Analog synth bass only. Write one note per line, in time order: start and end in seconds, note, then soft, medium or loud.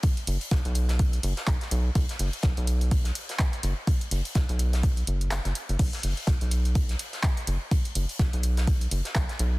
0.27 0.38 F#1 medium
0.51 0.62 B1 loud
0.65 1.19 B1 loud
1.23 1.34 F#1 loud
1.47 1.58 B1 medium
1.71 1.90 B1 loud
1.95 2.06 B1 loud
2.19 2.30 F#1 medium
2.44 2.54 B1 loud
2.57 3.11 B1 loud
3.63 3.74 F#1 medium
4.11 4.22 F#1 medium
4.35 4.46 B1 loud
4.49 5.03 B1 loud
5.07 5.39 F#1 medium
5.45 5.53 F#1 medium
5.69 5.77 F#1 medium
5.79 5.90 B1 loud
6.04 6.14 F#1 medium
6.27 6.38 B1 loud
6.41 6.95 B1 loud
7.48 7.58 F#1 medium
7.96 8.06 F#1 medium
8.19 8.30 B1 loud
8.33 8.87 B1 loud
8.91 9.02 F#1 loud
9.15 9.26 B1 medium
9.40 9.58 B1 loud